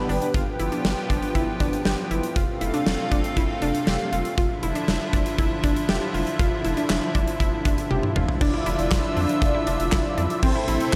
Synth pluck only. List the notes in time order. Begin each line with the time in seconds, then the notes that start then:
0.09 D4
0.34 F4
0.60 E4
0.72 D4
1.10 D4
1.35 E4
1.60 D4
1.86 G4
2.11 E4
2.36 F4
2.61 E4
2.74 D4
3.12 D4
3.37 E4
3.62 D4
3.87 G4
4.12 F4
4.38 F4
4.63 E4
4.76 D4
5.13 D4
5.39 E4
5.64 D4
5.89 G4
6.14 F4
6.39 F4
6.65 E4
6.77 D4
7.15 D4
7.40 E4
7.65 D4
7.91 G4
8.16 F4
8.41 D4
8.54 E4
8.66 E4
9.17 D4
9.55 E4
9.67 D4
9.92 E4
10.18 D4
10.43 C4
10.55 E4
10.68 E4